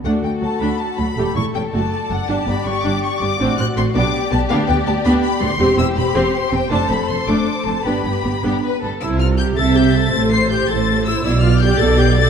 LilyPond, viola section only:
\new Staff \with { instrumentName = "Viola section" } { \time 6/8 \key d \major \tempo 4. = 108 <a d'>8 a8 <fis a>8 <a d'>8 r8 <fis a>8 | <a g'>8 <a e'>8 <a cis'>8 <a fis'>8 r8 a8 | d'8 <b d'>8 <g d'>8 d'8 r8 <g d'>8 | <c' d'>8 c'8 <a c'>8 <b d'>8 r8 <g b>8 |
\key c \major <b d'>8 b8 <g b>8 <b d'>8 r8 <g b>8 | <c' g'>8 <c' e'>8 c'8 <c' g'>8 r8 c'8 | <a d'>8 <a c'>8 a8 <a d'>8 r8 a8 | <b d'>8 b8 <g b>8 <b d'>8 r8 <g b>8 |
e'8 f'8 g'8 a'8 g'8 a'8~ | a'8 c''8 g'8 a'4 e'8 | e'8 f'8 g'8 a'8 g'8 a'8 | }